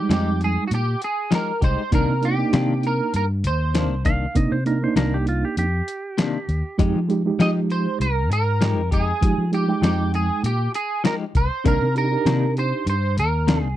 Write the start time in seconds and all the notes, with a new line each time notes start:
Already playing: G3 G#3 D#4 G4
0.09 F2 F3 G#3 D#4 G4, snare, closed hi-hat
0.41 G#4, closed hi-hat
0.68 A#2 F#4, closed hi-hat
0.75 G4
1.02 G#4, closed hi-hat
1.31 F3 G#3 D#4 G4, snare, closed hi-hat
1.35 A#4
1.61 C2 G#3 D#4 G4 C5, kick, closed hi-hat
1.91 C2 C3 D#3 A#3 D4 D#4 A#4, kick, closed hi-hat
2.09 C3
2.21 A#3 D4 D#4 G4, closed hi-hat
2.38 A#3 D4 D#4
2.53 C3 D#3 A#3 D4, snare, closed hi-hat
2.83 A#4, closed hi-hat
3.14 G2 A#4, closed hi-hat
3.44 D#2 C5, closed hi-hat
3.74 C3 D#3 A#3 D4, snare, closed hi-hat
3.91 C2
4.05 D#3 A#3 D4 F5, kick, closed hi-hat
4.35 C3 A#3 D4 D#4 D#5, kick, closed hi-hat
4.51 C3 C5
4.66 A#3 D4 D#4 A#4, closed hi-hat
4.83 A#3 D4 D#4 C5
4.96 C2 C3 D#3 A#3 D4 A#4, snare, closed hi-hat
5.14 G4
5.27 F4, closed hi-hat
5.45 G4
5.57 F2 G4, closed hi-hat
5.88 closed hi-hat
6.18 C3 D#3 A#3 D4, snare, closed hi-hat
6.49 D#2, closed hi-hat
6.78 F2 F3 G#3 D#4 G4, kick, closed hi-hat
6.96 F3
7.09 G#3 D#4 G4, closed hi-hat
7.25 G#3 D#4 G4
7.39 F3 G#3 D#4 G4 D#5, snare, closed hi-hat
7.70 C5, closed hi-hat
8.00 C2 A#4, closed hi-hat
8.31 G#2 A#4, closed hi-hat
8.61 F3 G#3 D#4 G4, snare, closed hi-hat
8.77 F2
8.91 G#3 D#4 G4 G#4, kick, closed hi-hat
9.21 F3 G#3 D#4 G4, kick, closed hi-hat
9.38 F3
9.52 G#3 D#4 G4, closed hi-hat
9.68 G#3 D#4 G5
9.82 F2 F3 G#3 D#4 G4, snare, closed hi-hat
10.14 G#4, closed hi-hat
10.43 A#2 G4, closed hi-hat
10.74 G#4, closed hi-hat
11.04 F3 G#3 D#4 G4 A#4, snare, closed hi-hat
11.35 C2 C5, kick, closed hi-hat
11.64 C2 C3 D#3 A#3 D4 D#4 A#4, kick, closed hi-hat
11.82 C3
11.95 D4 D#4 G4 A#4, closed hi-hat
12.11 D4 D#4 G4
12.25 C3 D#3 A#3 D4, snare, closed hi-hat
12.57 C5, closed hi-hat
12.86 G2 C5, closed hi-hat
13.17 D#2 A#4, closed hi-hat
13.47 C3 D#3 A#3 D4, snare, closed hi-hat
13.63 C2 G#4